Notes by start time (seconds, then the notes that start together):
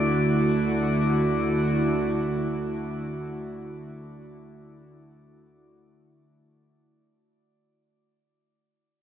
Already playing: D2 D3 A3 D4 E4 F#4 D5 D6